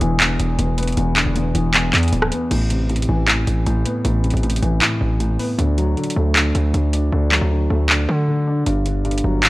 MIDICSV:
0, 0, Header, 1, 4, 480
1, 0, Start_track
1, 0, Tempo, 384615
1, 1213, Time_signature, 4, 2, 24, 8
1, 11847, End_track
2, 0, Start_track
2, 0, Title_t, "Grand piano"
2, 0, Program_c, 0, 0
2, 0, Control_c, 0, 64, 127
2, 0, Note_on_c, 0, 40, 89
2, 0, Note_on_c, 0, 50, 85
2, 11, Note_on_c, 0, 52, 93
2, 233, Note_off_c, 0, 40, 0
2, 251, Note_on_c, 0, 40, 85
2, 713, Note_off_c, 0, 40, 0
2, 732, Note_on_c, 0, 40, 82
2, 733, Note_off_c, 0, 50, 0
2, 972, Note_on_c, 0, 59, 92
2, 1192, Note_off_c, 0, 40, 0
2, 1211, Note_on_c, 0, 40, 92
2, 1212, Note_off_c, 0, 52, 0
2, 1453, Note_on_c, 0, 50, 80
2, 1675, Note_off_c, 0, 40, 0
2, 1694, Note_on_c, 0, 40, 84
2, 1932, Note_on_c, 0, 52, 85
2, 2154, Note_off_c, 0, 40, 0
2, 2172, Note_off_c, 0, 59, 0
2, 2172, Note_on_c, 0, 40, 88
2, 2633, Note_off_c, 0, 40, 0
2, 2652, Note_on_c, 0, 40, 78
2, 2653, Note_off_c, 0, 50, 0
2, 2892, Note_on_c, 0, 59, 86
2, 3132, Note_off_c, 0, 40, 0
2, 3132, Note_off_c, 0, 52, 0
2, 3132, Note_off_c, 0, 59, 0
2, 3133, Note_on_c, 0, 45, 90
2, 3150, Control_c, 0, 64, 0
2, 3373, Note_on_c, 0, 48, 85
2, 3383, Control_c, 0, 64, 127
2, 3593, Note_off_c, 0, 45, 0
2, 3612, Note_on_c, 0, 45, 79
2, 3852, Note_on_c, 0, 52, 88
2, 4072, Note_off_c, 0, 45, 0
2, 4091, Note_on_c, 0, 45, 82
2, 4553, Note_off_c, 0, 45, 0
2, 4572, Note_on_c, 0, 45, 86
2, 4573, Note_off_c, 0, 48, 0
2, 4811, Note_on_c, 0, 59, 85
2, 5031, Note_off_c, 0, 45, 0
2, 5050, Note_on_c, 0, 45, 92
2, 5052, Note_off_c, 0, 52, 0
2, 5290, Note_on_c, 0, 48, 74
2, 5513, Note_off_c, 0, 45, 0
2, 5531, Note_on_c, 0, 45, 79
2, 5770, Note_on_c, 0, 52, 86
2, 5991, Note_off_c, 0, 45, 0
2, 6010, Note_on_c, 0, 45, 88
2, 6012, Note_off_c, 0, 59, 0
2, 6472, Note_off_c, 0, 45, 0
2, 6491, Note_on_c, 0, 45, 76
2, 6492, Note_off_c, 0, 48, 0
2, 6731, Note_on_c, 0, 59, 93
2, 6971, Note_off_c, 0, 52, 0
2, 6971, Note_on_c, 0, 50, 93
2, 6972, Note_off_c, 0, 45, 0
2, 6972, Note_off_c, 0, 59, 0
2, 6988, Control_c, 0, 64, 0
2, 7211, Note_on_c, 0, 54, 85
2, 7225, Control_c, 0, 64, 127
2, 7432, Note_off_c, 0, 50, 0
2, 7450, Note_on_c, 0, 50, 88
2, 7691, Note_on_c, 0, 57, 80
2, 7912, Note_off_c, 0, 50, 0
2, 7931, Note_on_c, 0, 50, 86
2, 8392, Note_off_c, 0, 50, 0
2, 8410, Note_on_c, 0, 50, 80
2, 8412, Note_off_c, 0, 54, 0
2, 8652, Note_on_c, 0, 62, 87
2, 8873, Note_off_c, 0, 50, 0
2, 8892, Note_off_c, 0, 57, 0
2, 8892, Note_on_c, 0, 50, 99
2, 9132, Note_on_c, 0, 54, 83
2, 9354, Note_off_c, 0, 50, 0
2, 9373, Note_on_c, 0, 50, 80
2, 9611, Note_on_c, 0, 57, 84
2, 9834, Note_off_c, 0, 50, 0
2, 9852, Note_off_c, 0, 62, 0
2, 9853, Note_on_c, 0, 50, 83
2, 10313, Note_off_c, 0, 50, 0
2, 10332, Note_off_c, 0, 54, 0
2, 10332, Note_on_c, 0, 50, 81
2, 10571, Note_on_c, 0, 62, 84
2, 10811, Note_on_c, 0, 43, 85
2, 10812, Note_off_c, 0, 50, 0
2, 10812, Note_off_c, 0, 57, 0
2, 10812, Note_off_c, 0, 62, 0
2, 10829, Control_c, 0, 64, 0
2, 11025, Control_c, 0, 64, 127
2, 11052, Note_on_c, 0, 50, 76
2, 11272, Note_off_c, 0, 43, 0
2, 11291, Note_on_c, 0, 43, 84
2, 11532, Note_on_c, 0, 54, 85
2, 11753, Note_off_c, 0, 43, 0
2, 11772, Note_on_c, 0, 43, 86
2, 11847, Note_off_c, 0, 43, 0
2, 11847, Note_off_c, 0, 50, 0
2, 11847, Note_off_c, 0, 54, 0
2, 11847, End_track
3, 0, Start_track
3, 0, Title_t, "808-style bass"
3, 0, Program_c, 1, 38
3, 14, Note_on_c, 1, 28, 109
3, 474, Note_off_c, 1, 28, 0
3, 494, Note_on_c, 1, 28, 107
3, 724, Note_off_c, 1, 28, 0
3, 733, Note_on_c, 1, 28, 106
3, 1194, Note_off_c, 1, 28, 0
3, 1212, Note_on_c, 1, 28, 113
3, 1558, Note_off_c, 1, 28, 0
3, 1574, Note_on_c, 1, 28, 100
3, 1919, Note_off_c, 1, 28, 0
3, 1933, Note_on_c, 1, 28, 105
3, 2394, Note_off_c, 1, 28, 0
3, 2413, Note_on_c, 1, 40, 105
3, 2643, Note_off_c, 1, 40, 0
3, 2652, Note_on_c, 1, 26, 109
3, 2883, Note_off_c, 1, 26, 0
3, 3132, Note_on_c, 1, 33, 111
3, 3823, Note_off_c, 1, 33, 0
3, 3852, Note_on_c, 1, 33, 106
3, 4313, Note_off_c, 1, 33, 0
3, 4332, Note_on_c, 1, 33, 104
3, 4563, Note_off_c, 1, 33, 0
3, 4573, Note_on_c, 1, 33, 105
3, 4803, Note_off_c, 1, 33, 0
3, 5052, Note_on_c, 1, 33, 115
3, 5398, Note_off_c, 1, 33, 0
3, 5412, Note_on_c, 1, 33, 98
3, 5758, Note_off_c, 1, 33, 0
3, 5772, Note_on_c, 1, 33, 103
3, 6003, Note_off_c, 1, 33, 0
3, 6252, Note_on_c, 1, 33, 106
3, 6713, Note_off_c, 1, 33, 0
3, 6971, Note_on_c, 1, 38, 111
3, 7433, Note_off_c, 1, 38, 0
3, 7692, Note_on_c, 1, 38, 105
3, 8153, Note_off_c, 1, 38, 0
3, 8173, Note_on_c, 1, 38, 110
3, 8403, Note_off_c, 1, 38, 0
3, 8412, Note_on_c, 1, 38, 107
3, 8873, Note_off_c, 1, 38, 0
3, 8891, Note_on_c, 1, 38, 111
3, 9238, Note_off_c, 1, 38, 0
3, 9252, Note_on_c, 1, 38, 95
3, 9598, Note_off_c, 1, 38, 0
3, 9613, Note_on_c, 1, 38, 104
3, 10074, Note_off_c, 1, 38, 0
3, 10092, Note_on_c, 1, 50, 106
3, 10783, Note_off_c, 1, 50, 0
3, 10812, Note_on_c, 1, 31, 109
3, 11504, Note_off_c, 1, 31, 0
3, 11532, Note_on_c, 1, 31, 108
3, 11847, Note_off_c, 1, 31, 0
3, 11847, End_track
4, 0, Start_track
4, 0, Title_t, "Drums"
4, 13, Note_on_c, 9, 42, 71
4, 137, Note_off_c, 9, 42, 0
4, 252, Note_on_c, 9, 39, 118
4, 252, Note_on_c, 9, 42, 84
4, 376, Note_off_c, 9, 39, 0
4, 377, Note_off_c, 9, 42, 0
4, 493, Note_on_c, 9, 42, 75
4, 618, Note_off_c, 9, 42, 0
4, 732, Note_on_c, 9, 42, 81
4, 857, Note_off_c, 9, 42, 0
4, 972, Note_on_c, 9, 42, 74
4, 1032, Note_off_c, 9, 42, 0
4, 1032, Note_on_c, 9, 42, 62
4, 1092, Note_off_c, 9, 42, 0
4, 1092, Note_on_c, 9, 42, 53
4, 1153, Note_off_c, 9, 42, 0
4, 1153, Note_on_c, 9, 42, 44
4, 1212, Note_off_c, 9, 42, 0
4, 1212, Note_on_c, 9, 42, 82
4, 1337, Note_off_c, 9, 42, 0
4, 1452, Note_on_c, 9, 42, 67
4, 1453, Note_on_c, 9, 39, 101
4, 1577, Note_off_c, 9, 42, 0
4, 1578, Note_off_c, 9, 39, 0
4, 1692, Note_on_c, 9, 42, 72
4, 1817, Note_off_c, 9, 42, 0
4, 1932, Note_on_c, 9, 42, 73
4, 2057, Note_off_c, 9, 42, 0
4, 2172, Note_on_c, 9, 39, 119
4, 2172, Note_on_c, 9, 42, 83
4, 2297, Note_off_c, 9, 39, 0
4, 2297, Note_off_c, 9, 42, 0
4, 2412, Note_on_c, 9, 39, 72
4, 2412, Note_on_c, 9, 42, 59
4, 2473, Note_off_c, 9, 42, 0
4, 2473, Note_on_c, 9, 42, 57
4, 2532, Note_off_c, 9, 42, 0
4, 2532, Note_on_c, 9, 42, 58
4, 2537, Note_off_c, 9, 39, 0
4, 2592, Note_off_c, 9, 42, 0
4, 2592, Note_on_c, 9, 42, 56
4, 2653, Note_off_c, 9, 42, 0
4, 2653, Note_on_c, 9, 42, 81
4, 2772, Note_on_c, 9, 37, 98
4, 2777, Note_off_c, 9, 42, 0
4, 2892, Note_on_c, 9, 42, 78
4, 2897, Note_off_c, 9, 37, 0
4, 3017, Note_off_c, 9, 42, 0
4, 3132, Note_on_c, 9, 42, 77
4, 3132, Note_on_c, 9, 49, 93
4, 3257, Note_off_c, 9, 42, 0
4, 3257, Note_off_c, 9, 49, 0
4, 3372, Note_on_c, 9, 42, 73
4, 3497, Note_off_c, 9, 42, 0
4, 3612, Note_on_c, 9, 42, 42
4, 3692, Note_off_c, 9, 42, 0
4, 3692, Note_on_c, 9, 42, 59
4, 3772, Note_off_c, 9, 42, 0
4, 3772, Note_on_c, 9, 42, 73
4, 3897, Note_off_c, 9, 42, 0
4, 4091, Note_on_c, 9, 39, 114
4, 4092, Note_on_c, 9, 42, 77
4, 4216, Note_off_c, 9, 39, 0
4, 4217, Note_off_c, 9, 42, 0
4, 4333, Note_on_c, 9, 42, 70
4, 4458, Note_off_c, 9, 42, 0
4, 4573, Note_on_c, 9, 42, 73
4, 4697, Note_off_c, 9, 42, 0
4, 4812, Note_on_c, 9, 42, 75
4, 4936, Note_off_c, 9, 42, 0
4, 5052, Note_on_c, 9, 42, 80
4, 5177, Note_off_c, 9, 42, 0
4, 5293, Note_on_c, 9, 42, 42
4, 5372, Note_off_c, 9, 42, 0
4, 5372, Note_on_c, 9, 42, 48
4, 5452, Note_off_c, 9, 42, 0
4, 5452, Note_on_c, 9, 42, 50
4, 5533, Note_off_c, 9, 42, 0
4, 5533, Note_on_c, 9, 42, 57
4, 5613, Note_off_c, 9, 42, 0
4, 5613, Note_on_c, 9, 42, 65
4, 5694, Note_off_c, 9, 42, 0
4, 5694, Note_on_c, 9, 42, 69
4, 5773, Note_off_c, 9, 42, 0
4, 5773, Note_on_c, 9, 42, 66
4, 5898, Note_off_c, 9, 42, 0
4, 6012, Note_on_c, 9, 39, 109
4, 6013, Note_on_c, 9, 42, 81
4, 6137, Note_off_c, 9, 39, 0
4, 6138, Note_off_c, 9, 42, 0
4, 6493, Note_on_c, 9, 42, 72
4, 6618, Note_off_c, 9, 42, 0
4, 6733, Note_on_c, 9, 46, 55
4, 6858, Note_off_c, 9, 46, 0
4, 6974, Note_on_c, 9, 42, 77
4, 7098, Note_off_c, 9, 42, 0
4, 7213, Note_on_c, 9, 42, 71
4, 7337, Note_off_c, 9, 42, 0
4, 7453, Note_on_c, 9, 42, 44
4, 7533, Note_off_c, 9, 42, 0
4, 7533, Note_on_c, 9, 42, 60
4, 7613, Note_off_c, 9, 42, 0
4, 7613, Note_on_c, 9, 42, 73
4, 7738, Note_off_c, 9, 42, 0
4, 7932, Note_on_c, 9, 39, 112
4, 7933, Note_on_c, 9, 42, 80
4, 8057, Note_off_c, 9, 39, 0
4, 8057, Note_off_c, 9, 42, 0
4, 8172, Note_on_c, 9, 42, 66
4, 8297, Note_off_c, 9, 42, 0
4, 8413, Note_on_c, 9, 42, 75
4, 8537, Note_off_c, 9, 42, 0
4, 8651, Note_on_c, 9, 42, 78
4, 8776, Note_off_c, 9, 42, 0
4, 9133, Note_on_c, 9, 39, 101
4, 9258, Note_off_c, 9, 39, 0
4, 9851, Note_on_c, 9, 39, 116
4, 9976, Note_off_c, 9, 39, 0
4, 10812, Note_on_c, 9, 42, 79
4, 10936, Note_off_c, 9, 42, 0
4, 11052, Note_on_c, 9, 42, 72
4, 11177, Note_off_c, 9, 42, 0
4, 11292, Note_on_c, 9, 42, 44
4, 11371, Note_off_c, 9, 42, 0
4, 11371, Note_on_c, 9, 42, 58
4, 11452, Note_off_c, 9, 42, 0
4, 11452, Note_on_c, 9, 42, 75
4, 11576, Note_off_c, 9, 42, 0
4, 11772, Note_on_c, 9, 39, 112
4, 11773, Note_on_c, 9, 42, 81
4, 11847, Note_off_c, 9, 39, 0
4, 11847, Note_off_c, 9, 42, 0
4, 11847, End_track
0, 0, End_of_file